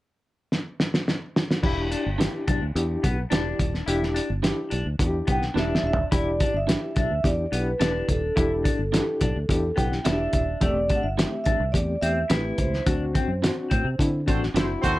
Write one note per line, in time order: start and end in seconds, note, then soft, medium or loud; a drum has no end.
0.52 snare medium
0.80 snare medium
0.94 snare medium
1.08 snare medium
1.36 snare loud
1.51 snare medium
1.63 1.94 E1 loud
1.63 2.03 D4 loud
1.63 1.79 E4 medium
1.63 2.03 E4 medium
1.63 2.03 G4 loud
1.63 kick loud
1.63 crash medium
1.91 2.07 D4 medium
1.91 closed hi-hat medium
2.06 2.27 G1 medium
2.18 2.30 D4 medium
2.18 2.59 D4 medium
2.18 2.59 E4 medium
2.18 2.31 G4 medium
2.18 2.60 G4 medium
2.18 2.31 B4 medium
2.18 snare medium
2.18 closed hi-hat medium
2.47 2.58 B1 medium
2.47 2.63 D4 medium
2.47 kick medium
2.47 closed hi-hat medium
2.62 2.72 D2 medium
2.75 2.96 E2 loud
2.75 3.15 D4 medium
2.75 3.16 E4 medium
2.75 3.16 G4 medium
2.75 closed hi-hat medium
3.03 3.24 B1 medium
3.03 3.19 B3 medium
3.03 kick medium
3.03 closed hi-hat medium
3.30 3.52 E1 medium
3.30 3.84 D4 medium
3.30 3.43 D4 medium
3.30 3.71 D4 medium
3.30 3.72 E4 medium
3.30 3.43 G4 medium
3.30 3.72 G4 medium
3.30 3.43 B4 medium
3.30 snare loud
3.30 closed hi-hat medium
3.59 3.80 D#1 medium
3.59 kick medium
3.59 closed hi-hat medium
3.74 snare soft
3.86 4.19 E1 medium
3.86 4.28 D4 loud
3.86 4.02 E4 medium
3.86 4.28 E4 medium
3.86 4.28 G4 loud
3.86 closed hi-hat medium
4.03 snare soft
4.14 4.30 D4 medium
4.14 closed hi-hat medium
4.30 4.50 G1 medium
4.43 4.55 D4 medium
4.43 4.84 D4 medium
4.43 4.84 E4 medium
4.43 4.55 G4 medium
4.43 4.84 G4 medium
4.43 4.55 B4 medium
4.43 snare medium
4.43 closed hi-hat medium
4.70 4.82 B1 medium
4.70 4.86 D4 medium
4.70 closed hi-hat medium
4.86 4.96 D2 medium
4.99 5.20 E2 loud
4.99 5.40 D4 medium
4.99 5.40 E4 medium
4.99 5.07 F#4 medium
4.99 kick medium
4.99 closed hi-hat medium
5.07 5.43 G4 medium
5.27 5.49 B1 medium
5.27 5.43 B3 medium
5.27 kick medium
5.27 closed hi-hat medium
5.31 5.58 G5 medium
5.42 snare soft
5.54 5.76 E1 medium
5.54 5.67 D4 medium
5.54 6.09 D4 medium
5.54 5.96 D4 medium
5.54 5.96 E4 medium
5.54 5.67 G4 medium
5.54 5.96 G4 medium
5.54 5.67 B4 medium
5.54 snare medium
5.59 5.84 E5 medium
5.75 snare medium
5.83 6.04 D#1 medium
5.83 5.99 E5 medium
5.93 floor tom loud
6.11 6.43 E1 medium
6.11 6.52 D4 medium
6.11 6.27 E4 medium
6.11 6.52 E4 medium
6.11 6.53 G4 loud
6.11 6.57 D5 medium
6.11 kick loud
6.11 closed hi-hat medium
6.40 6.56 D4 medium
6.40 kick medium
6.40 closed hi-hat medium
6.54 6.75 G1 medium
6.54 6.97 E5 medium
6.67 6.79 D4 medium
6.67 7.08 D4 medium
6.67 7.08 E4 medium
6.67 6.79 G4 medium
6.67 7.09 G4 medium
6.67 6.80 B4 medium
6.67 snare medium
6.67 closed hi-hat loud
6.96 7.07 B1 medium
6.96 7.12 D4 medium
6.96 7.26 E5 medium
6.96 kick medium
6.96 closed hi-hat medium
7.11 7.21 D2 medium
7.24 7.45 E2 loud
7.24 7.44 D4 medium
7.24 7.45 E4 medium
7.24 7.45 G4 medium
7.24 7.54 D5 medium
7.24 kick medium
7.24 closed hi-hat medium
7.52 7.73 B1 medium
7.52 7.68 B3 medium
7.52 7.72 D4 medium
7.52 7.72 E4 medium
7.52 7.73 G4 medium
7.52 7.80 B4 medium
7.52 closed hi-hat medium
7.80 8.01 E1 medium
7.80 8.33 D4 medium
7.80 8.20 D4 medium
7.80 7.92 D4 medium
7.80 8.20 E4 medium
7.80 7.92 G4 medium
7.80 8.21 G4 medium
7.80 7.92 B4 medium
7.80 8.10 B4 medium
7.80 snare loud
7.80 closed hi-hat medium
8.09 8.29 D#1 medium
8.09 9.83 A4 medium
8.09 kick medium
8.09 closed hi-hat medium
8.36 8.68 E1 loud
8.36 8.77 D4 loud
8.36 8.52 E4 medium
8.36 8.77 E4 medium
8.36 8.77 G4 loud
8.36 kick loud
8.36 closed hi-hat medium
8.64 8.80 D4 medium
8.64 kick medium
8.64 closed hi-hat medium
8.79 9.00 G1 medium
8.92 9.04 D4 medium
8.92 9.33 D4 medium
8.92 9.33 E4 medium
8.92 9.00 F#4 medium
8.92 9.04 G4 medium
8.92 9.05 B4 medium
8.92 snare medium
8.92 closed hi-hat medium
9.00 9.37 G4 medium
9.21 9.32 B1 medium
9.21 9.37 D4 medium
9.21 kick medium
9.21 closed hi-hat medium
9.36 9.46 D2 medium
9.49 9.70 E2 medium
9.49 9.69 D4 medium
9.49 9.69 E4 medium
9.49 9.70 G4 loud
9.49 kick medium
9.49 closed hi-hat medium
9.76 9.98 B1 medium
9.76 9.92 B3 medium
9.76 9.97 D4 medium
9.76 9.98 E4 medium
9.76 9.98 G4 medium
9.76 10.03 G5 medium
9.76 kick medium
9.76 closed hi-hat medium
9.92 snare soft
10.05 10.26 E1 medium
10.05 10.17 D4 medium
10.05 10.58 D4 medium
10.05 10.46 D4 medium
10.05 10.46 E4 medium
10.05 10.12 F#4 medium
10.05 10.17 G4 medium
10.05 10.17 B4 medium
10.05 10.33 E5 medium
10.05 snare loud
10.05 closed hi-hat loud
10.13 10.49 G4 medium
10.33 10.54 D#1 medium
10.33 10.63 E5 medium
10.33 kick medium
10.33 closed hi-hat medium
10.61 10.93 E1 loud
10.61 11.01 A3 loud
10.61 10.77 A3 medium
10.61 11.01 C4 medium
10.61 11.02 G4 loud
10.61 10.95 D5 loud
10.61 kick loud
10.61 closed hi-hat medium
10.90 11.05 D4 medium
10.90 kick medium
10.90 closed hi-hat medium
10.95 11.03 F#5 medium
11.03 11.25 G1 medium
11.03 11.43 E5 medium
11.17 11.58 A3 medium
11.17 11.58 C4 medium
11.17 11.29 E4 medium
11.17 11.29 G4 medium
11.17 11.58 G4 medium
11.17 11.30 C5 medium
11.17 snare medium
11.17 closed hi-hat medium
11.44 11.57 A1 medium
11.44 11.62 D4 medium
11.44 11.74 E5 medium
11.44 kick loud
11.44 closed hi-hat medium
11.60 11.70 C2 medium
11.72 11.95 E2 medium
11.72 11.94 A3 medium
11.72 11.94 C4 medium
11.72 11.95 G4 medium
11.72 11.99 D5 medium
11.72 kick medium
11.72 closed hi-hat medium
12.02 12.23 E2 medium
12.02 12.22 A3 medium
12.02 12.22 C4 medium
12.02 12.18 C4 medium
12.02 12.23 G4 medium
12.02 12.31 E5 medium
12.02 closed hi-hat medium
12.29 12.51 A1 medium
12.29 12.70 A3 medium
12.29 12.71 C4 medium
12.29 12.83 E4 medium
12.29 12.42 E4 medium
12.29 12.42 G4 medium
12.29 12.71 G4 medium
12.29 12.57 B4 medium
12.29 12.42 C5 medium
12.29 snare loud
12.29 closed hi-hat loud
12.58 12.79 C#2 medium
12.58 14.23 C5 medium
12.58 kick medium
12.58 closed hi-hat medium
12.74 snare soft
12.86 13.18 D2 medium
12.86 13.27 C4 medium
12.86 13.02 D4 medium
12.86 13.27 D4 medium
12.86 13.27 F#4 loud
12.86 kick loud
12.86 closed hi-hat medium
13.15 13.30 C4 medium
13.15 kick medium
13.15 closed hi-hat medium
13.28 13.49 F#2 medium
13.42 13.83 C4 medium
13.42 13.54 D4 medium
13.42 13.83 D4 medium
13.42 13.54 F#4 medium
13.42 13.83 F#4 medium
13.42 13.55 C5 medium
13.42 snare loud
13.42 closed hi-hat medium
13.70 13.82 A2 medium
13.70 13.86 C4 medium
13.70 kick medium
13.70 closed hi-hat medium
13.85 13.95 C3 medium
13.99 14.29 D3 medium
13.99 14.19 C4 medium
13.99 14.19 D4 medium
13.99 14.19 E4 medium
13.99 kick medium
13.99 closed hi-hat medium
14.27 14.48 A1 medium
14.27 14.47 C4 medium
14.27 14.39 C4 medium
14.27 14.47 D4 medium
14.27 14.43 D4 medium
14.27 14.47 F#4 medium
14.27 14.40 F#4 medium
14.27 14.39 A4 medium
14.27 14.39 C5 medium
14.27 kick medium
14.27 closed hi-hat medium
14.43 snare soft
14.54 14.75 F#1 medium
14.54 14.95 C4 medium
14.54 14.68 C4 medium
14.54 14.66 D4 medium
14.54 14.95 D4 medium
14.54 14.99 E4 medium
14.54 14.62 F4 medium
14.54 14.67 F#4 medium
14.54 14.68 F#4 medium
14.54 14.68 A4 medium
14.54 14.67 C5 medium
14.54 14.68 C5 medium
14.54 snare loud
14.54 closed hi-hat medium
14.62 14.99 F#4 medium
14.82 14.99 D#2 medium
14.82 14.99 C4 medium
14.82 14.99 F#4 medium
14.82 14.99 A4 medium
14.82 14.99 C5 loud
14.82 kick medium
14.82 closed hi-hat medium